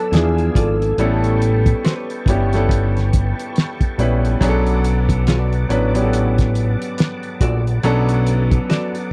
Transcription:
Already playing: F#3 B3 D4 E4 F#4 A4 B4 D5 E6
0.11 E2 F3 B3 D4 E4 G#4 F5 G#5, snare, closed hi-hat
0.17 G#4
0.38 closed hi-hat
0.55 G#1 F4 G#4 A4 D5, kick, closed hi-hat
0.82 closed hi-hat
0.98 A1 G3 B3 C#4 E4 A4 B4 G5 A5 C#6, closed hi-hat
1.24 closed hi-hat
1.42 closed hi-hat
1.66 kick, closed hi-hat
1.84 G4 B4 C#5, snare, closed hi-hat
2.10 closed hi-hat
2.26 G1 G3 B3 C#4 E4 G4, kick, closed hi-hat
2.53 G3 B3 C#4 E4 A4, snare, closed hi-hat
2.69 kick, closed hi-hat
2.97 snare, closed hi-hat
3.13 kick, closed hi-hat
3.39 closed hi-hat
3.56 snare, closed hi-hat
3.81 kick, closed hi-hat
3.98 A#1 G3 B3 C#4 E4 B4, closed hi-hat
4.25 closed hi-hat
4.41 B1 F#3 B3 C#4 D4 G#4 F#5 D6, kick, closed hi-hat
4.49 A4
4.67 closed hi-hat
4.84 closed hi-hat
5.09 kick, closed hi-hat
5.27 F#4 A4 D5, snare, closed hi-hat
5.53 closed hi-hat
5.69 A1 F#3 B3 C#4 D4 B4, closed hi-hat
5.94 F#3 B3 C#4 D4 G4, closed hi-hat
6.03 A4
6.13 closed hi-hat
6.38 kick, snare, closed hi-hat
6.55 closed hi-hat
6.82 closed hi-hat
6.98 snare, closed hi-hat
7.23 closed hi-hat
7.41 A#1 F#4 A4 D5, kick, closed hi-hat
7.67 closed hi-hat
7.83 B1 F#3 B3 C#4 D4 A4, closed hi-hat
8.09 closed hi-hat
8.27 closed hi-hat
8.51 kick, closed hi-hat
8.70 F#4 A4 D5, snare, closed hi-hat
8.95 closed hi-hat

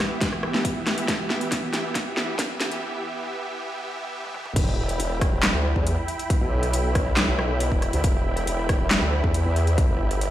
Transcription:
Already playing: E3 B3 G4 E5
0.21 kick, snare, closed hi-hat
0.33 cross-stick
0.43 cross-stick
0.54 snare
0.65 kick, closed hi-hat
0.87 cross-stick, snare, closed hi-hat
0.98 closed hi-hat
1.08 kick, snare, closed hi-hat
1.30 snare
1.41 closed hi-hat
1.52 kick, snare, closed hi-hat
1.73 snare, closed hi-hat
1.95 kick, snare, closed hi-hat
2.17 snare
2.39 kick, snare, closed hi-hat
2.60 snare, closed hi-hat
2.72 closed hi-hat
4.24 high tom
4.34 mid tom
4.46 mid tom
4.56 E1 E4 E5 G5 B5, kick, closed hi-hat, crash
4.89 closed hi-hat
5.00 E1, closed hi-hat
5.21 kick, cross-stick, closed hi-hat
5.32 E1
5.43 snare, clap, closed hi-hat
5.54 D2
5.76 E2, kick
5.87 closed hi-hat
6.08 closed hi-hat
6.19 closed hi-hat
6.30 kick, closed hi-hat
6.41 B1
6.63 closed hi-hat
6.73 closed hi-hat
6.95 kick, cross-stick, closed hi-hat
7.17 snare, clap, closed hi-hat
7.28 B1
7.39 cross-stick
7.60 closed hi-hat
7.72 E1, kick
7.82 cross-stick, closed hi-hat
7.93 D2, closed hi-hat
8.04 E1, kick, closed hi-hat
8.37 closed hi-hat
8.47 E1, closed hi-hat
8.69 kick, cross-stick, closed hi-hat
8.80 E1
8.91 snare, clap, closed hi-hat
9.02 D2
9.24 E2, kick
9.34 closed hi-hat
9.45 E2
9.56 closed hi-hat
9.67 closed hi-hat
9.78 kick, closed hi-hat
9.89 G1
10.11 closed hi-hat
10.21 closed hi-hat

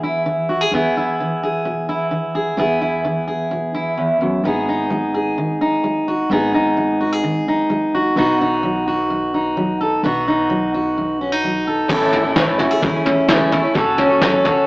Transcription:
Already playing: E2 B2 B3 G#4
0.03 E4
0.26 E3
0.49 F#4
0.61 G#4
0.71 E2 B3 E4 G#4
0.97 E4
1.20 E3
1.43 G#4
1.65 B2
1.89 E4
2.11 E3
2.35 G#4
2.57 E2 B3 E4 G#4
2.81 E4
3.05 E3
3.28 G#4
3.51 B2
3.74 E4
3.98 E2
4.21 F#2
4.44 G#1 G#2 B3 D#4 G#4
4.69 D#4
4.90 G#3
5.14 G#4
5.38 D#3
5.61 D#4
5.84 G#3
6.08 F#4
6.30 G#1 G#2 B3 D#4 G#4
6.54 D#4
6.77 G#3
7.01 F#4
7.12 G#4
7.24 D#3
7.48 D#4
7.70 G#3
7.95 F#4
8.16 B1 B2 B3 D#4 F#4
8.41 D#4
8.63 F#3
8.88 F#4
9.10 F#2
9.34 D#4
9.57 F#3
9.81 A4
10.03 B1 B2 B3 D#4 F#4
10.28 D#4
10.50 F#3
10.74 F#4
10.97 F#2
11.21 C#4
11.32 D#4
11.44 F#3
11.67 A4
11.88 A1 A2 E3 A3 C#4 E4 A4, kick, floor tom, crash
12.13 E4, floor tom
12.24 A3 C#4 E4 A4
12.35 A2 E3 A3 C#4 E4 A4, kick, snare, floor tom
12.58 A3 C#4 E4 F#4 A4, floor tom
12.71 G#4
12.81 E2 E3 A3 C#4 E4 A4, kick, floor tom
12.94 A3 C#4 E4
13.05 C#4, floor tom
13.28 A2 E3 A3 C#4 E4 A4, kick, snare, floor tom
13.51 A3 C#4 E4 A4, floor tom
13.62 A3 C#4 E4 A4
13.74 F#1 F#2 F#3 C#4 F#4 A4, kick, floor tom
13.98 C#4, floor tom
14.09 C#4 F#4 A4
14.21 F#3 C#4 F#4 A4, kick, snare, floor tom
14.44 F#3 C#4 F#4 A4, floor tom

